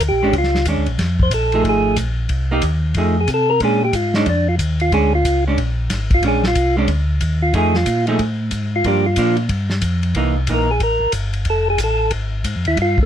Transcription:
0.00 D2, kick, hi-hat pedal, ride
0.08 A#1 G4
0.23 G#1 G#3 C#4 D4
0.32 C#2, kick, ride
0.38 F4
0.43 snare
0.55 snare
0.65 D#2 G#3 C#4 D4, kick, hi-hat pedal, ride
0.77 D2
0.86 A#1, ride
0.98 F2, kick, snare, ride
1.20 C5, kick
1.31 A#1 A4, kick, hi-hat pedal, ride
1.52 F3 A3 D#4 G#4, ride
1.64 G#1, kick, ride
1.69 G#4
1.96 A#1, kick, hi-hat pedal, ride
2.29 C2, kick, ride
2.51 A#3 D#4 G4
2.62 D#2, kick, hi-hat pedal, ride
2.94 F2 F3 A3 D#4 G#4, kick, ride
3.21 G#4
3.28 C3, kick, hi-hat pedal, ride
3.34 A4
3.50 A#4
3.60 A#2 G#3 C#4 D4, kick, ride
3.65 G#4
3.84 G4
3.93 G#2 F4, kick, hi-hat pedal, ride
4.14 G#3 C#4 D4 D#4, snare
4.26 F2 D4, kick, ride
4.49 F4
4.58 D#2, kick, hi-hat pedal, ride
4.80 F4, ride
4.91 D2 G#3 C#4 D4 G#4, kick, ride
5.15 F4
5.24 C#2, kick, hi-hat pedal, ride
5.47 G#3 C#4 D4
5.58 A#1, kick, ride
5.90 G#1, kick, snare, hi-hat pedal, ride
6.11 F4, kick, ride
6.22 A#1 G#3 C#4 D4, kick, ride
6.28 G#4
6.44 F4, snare
6.55 C2, kick, hi-hat pedal, ride
6.77 G#3 C#4 D4
6.88 D2, kick, ride
7.21 D#2, kick, hi-hat pedal, ride
7.42 F4
7.53 F2 F3 A3 D#4 G#4, kick, ride
7.58 G#4
7.74 F4, snare
7.86 A#2, kick, hi-hat pedal, ride
8.07 F3 A3 D#4 G#4, ride
8.19 A2, kick, ride
8.51 G#2, kick, hi-hat pedal, ride
8.76 F4
8.84 G2 F3 A#3 D4 G4, kick, ride
9.06 F4
9.16 A#2 F3 A#3 D4, kick, hi-hat pedal, ride
9.37 ride
9.49 G2, kick, ride
9.70 snare
9.82 F2, kick, hi-hat pedal, ride
10.03 ride
10.15 C2 E3 A#3 D#4, kick, ride
10.47 A#1 E3 A#3 D#4, kick, hi-hat pedal, ride
10.54 A#4
10.71 G#4
10.80 A1 A#4, kick, ride
11.00 A1
11.12 G1, kick, hi-hat pedal, ride
11.33 ride
11.45 F1, kick, ride
11.50 A4
11.70 G#4
11.78 A1, kick, hi-hat pedal, ride
11.83 A4
12.11 G#1, kick, ride
12.44 G#2, kick, hi-hat pedal, ride
12.56 F2
12.65 D#2 E4, ride
12.76 G2, kick, ride
12.82 F4
12.98 kick

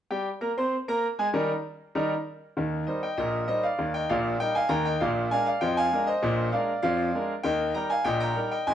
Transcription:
0.11 G3 G4 G5
0.41 A#3 A#4 A#5
0.58 C4 C5 C6
0.88 A#3 A#4 A#5
1.19 G#3 G#4 G#5
1.33 D#3 G3 D#4 A#4
1.95 D#3 G3 D#4 A#4
2.57 D#2 D#3
2.87 G3 D#4 A#4 C5 D#5
3.03 D#5 G5
3.17 A#1 A#2 A#4 D#5
3.48 G3 D#4 A#4 C5 D#5
3.63 D5 F5
3.78 D#2 D#3
3.94 D#5 G5
4.09 A#1 A#2 D5 F5
4.40 G3 D#4 A#4 D#5 G5
4.55 F5 G#5
4.69 D#2 D#3 G5 A#5
4.85 D#5 G5
5.00 A#1 A#2 D5 F5
5.31 G#3 D4 A#4 F5 G#5
5.46 D5 F5
5.61 F2 F3 D#5 G5
5.77 F5 G#5
5.92 G#3 D4 A#4
6.07 C5 D#5
6.22 A#1 A#2
6.52 G#3 D4 A#4 D5 F5
6.83 F2 F3 D5 F5
7.14 G#3 D4 A#4
7.43 D#2 D#3 D#5 G5
7.74 G3 D#4 A#4 G5 A#5
7.90 F5 G#5
8.05 A#1 A#2 D#5 G5
8.20 G5 A#5
8.36 G3 D#4 A#4
8.52 D#5 G5
8.67 G#1 G#2 D#5 G#5

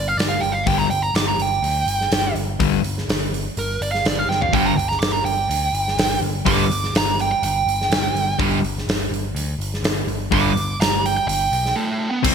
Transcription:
Already playing: G1
0.08 F5
0.17 G1 D5, snare, open hi-hat
0.29 F5
0.41 G1 G5, open hi-hat
0.52 F5
0.63 G1 G2 D3 G5, kick, open hi-hat
0.68 G3
0.78 A#5
0.90 G1 G5, open hi-hat
1.02 A#5
1.14 G1 D6, snare, open hi-hat
1.28 A#5
1.39 G1 G5, open hi-hat
1.63 D2, open hi-hat
1.87 G1, open hi-hat
2.01 snare
2.12 G1, snare, open hi-hat
2.36 G1, open hi-hat
2.60 G1 G2 D3 G3, kick, open hi-hat
2.83 G1, open hi-hat
2.98 snare
3.08 G1, snare, open hi-hat
3.34 open hi-hat
3.57 G1 A#4, open hi-hat
3.81 G1 D5, open hi-hat
3.92 F5, snare
4.05 G1 D5, snare, open hi-hat
4.19 F5
4.29 G1 G5, snare
4.42 F5, floor tom
4.53 G1 G2 D3 G3 G5, kick, open hi-hat
4.66 A#5
4.76 G1 G5, open hi-hat
4.89 A#5, snare
5.00 G1 D6, snare, open hi-hat
5.13 A#5
5.25 G1 G5, open hi-hat
5.48 D2, open hi-hat
5.73 G1, open hi-hat
5.88 snare
5.97 G1, snare, open hi-hat
6.21 G1, open hi-hat
6.45 G1 G2 D3 G3 D6, kick, open hi-hat
6.70 G1, open hi-hat
6.84 snare
6.94 G1 A#5, snare, open hi-hat
7.19 G5, open hi-hat
7.32 G5
7.43 G1 G5, open hi-hat
7.67 G1, open hi-hat
7.81 snare
7.90 G1, snare, open hi-hat
8.13 G1, open hi-hat
8.39 G1 G2 D3 G3, kick, open hi-hat
8.62 G1, open hi-hat
8.78 snare
8.87 G1, snare, open hi-hat
9.11 G1, open hi-hat
9.35 D2, open hi-hat
9.59 G1, open hi-hat
9.74 snare
9.83 G1, snare, open hi-hat
10.07 G1, open hi-hat
10.31 G1 G2 D3 G3 D6, kick, open hi-hat
10.55 G1, open hi-hat
10.79 G1 A#5, snare, open hi-hat
11.06 G5, open hi-hat
11.17 G5
11.27 G1 G5, open hi-hat
11.52 B1, open hi-hat
11.66 snare
11.76 A3
12.11 B3
12.23 C2 C3 G3 C4, kick, crash

